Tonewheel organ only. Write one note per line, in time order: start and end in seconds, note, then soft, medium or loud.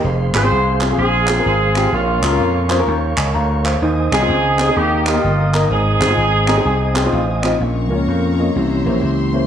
0.05 1.92 G#4 medium
0.05 1.92 C5 medium
0.05 3.79 F5 medium
0.05 1.92 C6 medium
1.93 3.80 A#4 medium
1.93 3.80 C#5 medium
1.93 3.80 C#6 medium
3.83 4.76 C5 medium
3.83 5.70 D#5 medium
3.83 4.76 G#5 medium
3.83 7.57 D#6 medium
4.77 5.70 A#4 medium
4.77 5.70 G5 medium
5.71 7.59 C5 medium
5.71 7.59 D#5 medium
5.71 7.59 G#5 medium
7.59 8.51 F3 soft
7.59 8.52 A#3 soft
7.59 7.90 C#4 soft
7.90 8.52 C#4 medium
7.90 8.52 F4 medium
7.90 8.35 A#4 loud
8.55 9.47 E3 soft
8.55 9.03 A#3 medium
8.55 9.47 C#4 medium
8.55 9.03 E4 medium
8.55 9.02 G4 medium
9.03 9.47 A#3 medium
9.03 9.47 E4 medium
9.03 9.47 G4 medium